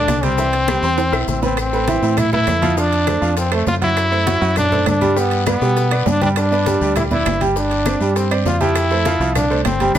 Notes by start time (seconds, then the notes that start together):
Already playing: D3 D4 D5
0.07 C2, high bongo, low bongo, high conga, high timbale, low timbale, short guiro, claves, maracas
0.23 G3 C4 G4 G5, high bongo, high conga, high timbale, short guiro, maracas
0.38 E3 E4 E5, high bongo, high conga, long guiro, maracas
0.53 high bongo, high conga, high timbale, maracas
0.68 G3 G4 G5, high bongo, high conga, high timbale, low timbale, short guiro, claves, maracas
0.82 E2 C4 C5 C6, high conga, short guiro, maracas
0.98 high bongo, high conga, high timbale, long guiro, maracas
1.12 B1 E4 E5 E6, high bongo, high conga, claves, maracas
1.27 A1 C4, high bongo, high conga, short guiro, maracas
1.42 B3 C4 B4 B5, low bongo, high conga, low timbale, short guiro, maracas
1.57 C4, high bongo, high conga, high timbale, long guiro, claves, maracas
1.72 A3 A4 B4, high conga, maracas
1.88 E3 E4 E5, high bongo, high conga, high timbale, low timbale, short guiro, maracas
2.02 A2 E3 E4 E5, high conga, short guiro, maracas
2.17 E4, high bongo, high conga, low conga, high timbale, long guiro, claves, maracas
2.32 A3 E4 A4 B4, high bongo, high conga, low conga, maracas
2.47 F2, high bongo, low bongo, high conga, high timbale, low timbale, short guiro, claves, maracas
2.62 F3 F4 F5, high bongo, high conga, high timbale, short guiro, maracas
2.77 F3 D4 F4 F5, high bongo, high conga, long guiro, maracas
2.92 high bongo, high conga, high timbale, maracas
3.07 A3 A4 C5, high bongo, high conga, high timbale, low timbale, short guiro, claves, maracas
3.21 F2 F3 F4 F5, high conga, short guiro, maracas
3.37 C4, high bongo, high conga, high timbale, long guiro, maracas
3.51 A3 A4 C5, high bongo, high conga, high timbale, claves, maracas
3.67 F#2 F4, high bongo, low bongo, high conga, low timbale, short guiro, maracas
3.81 F#3 E4 F#4 F#5, high bongo, high conga, high timbale, short guiro, maracas
3.97 high bongo, high conga, high timbale, claves, maracas
4.11 A3 A4 C5, high bongo, high conga, maracas
4.27 F#3 F#4 F#5, high bongo, high conga, high timbale, low timbale, short guiro, maracas
4.41 F#2 F#3 F#4 F#5, high conga, short guiro, maracas
4.56 D4, high bongo, high conga, low conga, high timbale, long guiro, claves, maracas
4.72 A3 A4 C5, high bongo, high conga, low conga, maracas
4.86 G2 D4, high bongo, low bongo, high conga, high timbale, low timbale, short guiro, claves, maracas
5.01 G3 G4 G5, high conga, high timbale, short guiro, maracas
5.16 G3 B3 G4 G5, high bongo, high conga, long guiro, maracas
5.31 high bongo, high conga, high timbale, maracas
5.46 B3 B4 D5, high bongo, high conga, high timbale, low timbale, short guiro, claves, maracas
5.61 B2 G3 G4 G5, high bongo, high conga, short guiro, maracas
5.76 high bongo, high conga, high timbale, long guiro, maracas
5.91 B3 B4 D5, high bongo, high conga, high timbale, claves, maracas
6.06 G2 D4, low bongo, high conga, low timbale, short guiro, maracas
6.21 G3 D4 G4 G5, low bongo, high conga, high timbale, short guiro, maracas
6.36 D4, high bongo, high conga, high timbale, long guiro, claves, maracas
6.51 B3 B4 D5, high bongo, high conga, maracas
6.66 G3 G4 G5, high bongo, high conga, high timbale, low timbale, short guiro, maracas
6.81 D2 G3 G4 G5, high conga, short guiro, maracas
6.96 E4, high bongo, high conga, low conga, high timbale, long guiro, claves, maracas
7.11 B3 E4 B4 D5, high bongo, high conga, low conga, maracas
7.25 G1, high bongo, low bongo, high conga, high timbale, low timbale, short guiro, claves, maracas
7.41 G3 G4 G5, high bongo, high conga, high timbale, short guiro, maracas
7.56 G3 D4 G4 G5, high bongo, high conga, long guiro, maracas
7.71 high bongo, high conga, high timbale, maracas
7.86 C4 C5 D5, high bongo, high conga, high timbale, low timbale, short guiro, claves, maracas
8.00 G2 G3 G4 G5, high conga, short guiro, maracas
8.15 C4, high bongo, high conga, high timbale, long guiro, maracas
8.31 C4 C5 D5, high bongo, high conga, high timbale, claves, maracas
8.45 F2 F4, high bongo, low bongo, high conga, low timbale, short guiro, maracas
8.61 F3 E4 G4 G5, high bongo, high conga, high timbale, short guiro, maracas
8.75 high bongo, high conga, high timbale, long guiro, claves, maracas
8.90 A3 A4 C5, high bongo, high conga, maracas
9.05 F3 F4 F5, high bongo, high conga, high timbale, low timbale, short guiro, maracas
9.19 C2 F3 F4 F5, high conga, short guiro, maracas
9.35 D4, high bongo, high conga, low conga, high timbale, long guiro, claves, maracas
9.50 A3 A4 C5, high bongo, high conga, maracas
9.65 G1 C4, high bongo, low bongo, high conga, high timbale, low timbale, short guiro, claves, maracas
9.80 G3 G4 G5, high bongo, high conga, high timbale, short guiro, maracas
9.94 G1 D4 E4 G4 B4, low bongo, high conga, high timbale, long guiro, claves, maracas